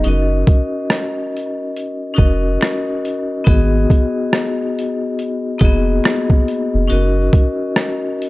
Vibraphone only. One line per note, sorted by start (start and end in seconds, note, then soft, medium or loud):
0.04 1.20 C#4 medium
0.04 1.21 D#4 medium
0.04 1.21 F#4 medium
0.04 1.22 A#4 medium
0.08 1.22 D#5 medium
2.14 3.01 C#4 medium
2.14 3.01 D#4 medium
2.14 3.02 F#4 medium
2.14 3.03 A#4 medium
2.18 3.03 D#5 medium
3.44 4.62 B3 medium
3.44 4.62 D#4 medium
3.44 4.63 F#4 medium
3.44 4.63 G#4 medium
3.48 4.64 D#5 medium
5.58 5.68 A#3 medium
5.58 6.45 D#4 medium
5.58 6.46 F#4 medium
5.58 6.46 G#4 medium
5.63 6.48 B3 medium
5.63 6.47 D#5 medium
6.87 8.05 C#4 medium
6.87 8.05 D#4 medium
6.87 8.06 F#4 medium
6.87 8.06 A#4 medium
6.92 8.07 D#5 medium